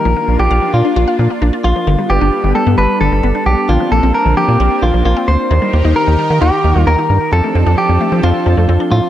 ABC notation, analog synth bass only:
X:1
M:4/4
L:1/16
Q:1/4=132
K:Bb
V:1 name="Analog synth bass" clef=bass
B,,, z B,,, B,,, B,,, z B,, z B,,, z B,, z B,,, z B,,, z | G,,, z G,,, G,,, z G,,, z G,, G,,, z G,,, G,,, G,,, z =B,,, z | B,,, z B,,, B,,, z B,,, z B,, B,,, z B,,, B,,, B,,, z D,, z | E,, z E,, E,, z E,, z E, E,, z E,, E,, E,, z G,, z |
F,, z F,, F,, z F,, z F, F,, z F,, F,, F,, z A,, z |]